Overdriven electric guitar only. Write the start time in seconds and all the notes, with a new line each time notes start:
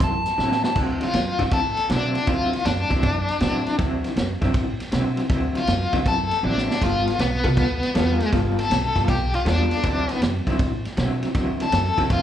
1.03 F4
1.53 A4
1.91 D4
2.29 F4
2.65 D4
5.57 F4
6.08 A4
6.45 D4
6.83 F4
7.21 B3
8.59 A4
9.10 G4
9.35 F4
9.47 D4
11.62 A4
12.13 F4